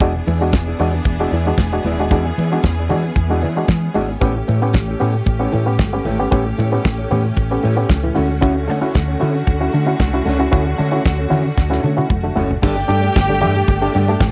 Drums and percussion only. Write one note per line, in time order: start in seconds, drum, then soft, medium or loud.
0.00 kick loud
0.00 closed hi-hat medium
0.00 muted conga medium
0.26 open hi-hat medium
0.26 muted conga medium
0.52 kick loud
0.52 snare loud
0.52 closed hi-hat medium
0.52 high conga medium
0.80 open hi-hat medium
1.05 kick loud
1.05 closed hi-hat medium
1.05 muted conga medium
1.31 open hi-hat medium
1.31 muted conga soft
1.58 kick loud
1.58 snare loud
1.58 closed hi-hat medium
1.58 high conga medium
1.83 open hi-hat medium
1.83 high conga medium
2.11 kick loud
2.11 closed hi-hat medium
2.11 muted conga medium
2.37 open hi-hat medium
2.37 muted conga medium
2.63 kick loud
2.63 snare loud
2.63 closed hi-hat medium
2.63 high conga medium
2.90 open hi-hat medium
2.90 low conga medium
3.16 kick loud
3.16 closed hi-hat medium
3.16 muted conga medium
3.42 open hi-hat medium
3.68 kick loud
3.68 snare loud
3.68 closed hi-hat medium
3.68 high conga medium
3.94 open hi-hat medium
3.94 high conga medium
4.21 kick loud
4.21 closed hi-hat medium
4.21 muted conga medium
4.47 open hi-hat medium
4.47 muted conga medium
4.73 kick loud
4.73 snare loud
4.73 closed hi-hat medium
4.73 high conga medium
5.01 open hi-hat medium
5.26 kick loud
5.26 closed hi-hat medium
5.26 muted conga medium
5.52 open hi-hat medium
5.52 muted conga soft
5.79 kick loud
5.79 snare loud
5.79 closed hi-hat medium
5.79 high conga medium
6.05 open hi-hat medium
6.05 high conga medium
6.32 kick loud
6.32 closed hi-hat medium
6.32 muted conga soft
6.58 open hi-hat medium
6.58 muted conga medium
6.84 kick loud
6.84 snare loud
6.84 closed hi-hat medium
6.84 high conga medium
7.11 open hi-hat medium
7.11 low conga medium
7.37 kick loud
7.37 closed hi-hat medium
7.37 muted conga medium
7.63 open hi-hat medium
7.63 muted conga soft
7.89 kick loud
7.89 snare loud
7.89 closed hi-hat medium
7.89 high conga medium
8.15 open hi-hat medium
8.15 high conga medium
8.42 kick loud
8.42 closed hi-hat medium
8.42 muted conga medium
8.68 open hi-hat medium
8.68 muted conga medium
8.94 kick loud
8.94 snare loud
8.94 closed hi-hat medium
8.94 high conga medium
9.21 open hi-hat medium
9.47 kick loud
9.47 closed hi-hat medium
9.47 muted conga medium
9.73 open hi-hat medium
9.73 muted conga soft
10.00 kick loud
10.00 snare loud
10.00 closed hi-hat medium
10.00 high conga medium
10.26 open hi-hat medium
10.26 high conga medium
10.53 kick loud
10.53 closed hi-hat medium
10.53 muted conga medium
10.79 open hi-hat medium
10.79 muted conga medium
11.05 kick loud
11.05 snare loud
11.05 closed hi-hat medium
11.05 high conga medium
11.31 open hi-hat medium
11.31 low conga medium
11.57 kick loud
11.57 snare medium
11.57 muted conga medium
11.72 snare medium
11.84 high tom medium
11.84 muted conga soft
11.98 high tom medium
12.10 kick loud
12.10 high conga medium
12.36 floor tom loud
12.36 high conga medium
12.51 floor tom medium
12.63 kick loud
12.63 crash loud
12.63 muted conga medium
12.76 closed hi-hat medium
12.89 open hi-hat medium
12.89 muted conga medium
13.04 closed hi-hat medium
13.16 kick loud
13.16 snare loud
13.16 high conga medium
13.30 closed hi-hat medium
13.42 open hi-hat medium
13.42 low conga medium
13.55 closed hi-hat soft
13.68 kick loud
13.68 closed hi-hat medium
13.68 muted conga medium
13.82 closed hi-hat medium
13.94 open hi-hat medium
13.94 muted conga soft
14.08 closed hi-hat medium
14.20 kick loud
14.20 snare loud
14.20 high conga medium